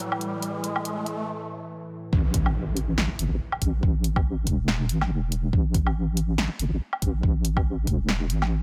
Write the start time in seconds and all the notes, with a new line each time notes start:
Already playing: A2 E3, riser
0.12 low woodblock
0.21 closed hi-hat
0.42 closed hi-hat
0.64 closed hi-hat
0.76 low woodblock
0.85 closed hi-hat
1.06 closed hi-hat
2.13 A1, kick, impact
2.34 kick, closed hi-hat
2.46 low woodblock
2.77 closed hi-hat
2.98 A1, snare
3.19 G1, closed hi-hat
3.31 A1
3.52 low woodblock
3.62 A1, kick, closed hi-hat
3.83 A1, kick
4.04 closed hi-hat
4.16 kick, low woodblock
4.47 E1, kick, closed hi-hat
4.68 snare
4.89 A1, closed hi-hat
5.01 snare, low woodblock
5.10 E1
5.32 closed hi-hat
5.53 A1, kick
5.74 kick, closed hi-hat
5.87 low woodblock
6.17 closed hi-hat
6.38 A1, snare
6.59 G1, closed hi-hat
6.71 A1
6.93 low woodblock
7.02 A1, kick, closed hi-hat
7.23 A1, kick
7.45 closed hi-hat
7.57 kick, low woodblock
7.87 E1, kick, closed hi-hat
8.09 snare
8.30 A1, closed hi-hat
8.42 snare, low woodblock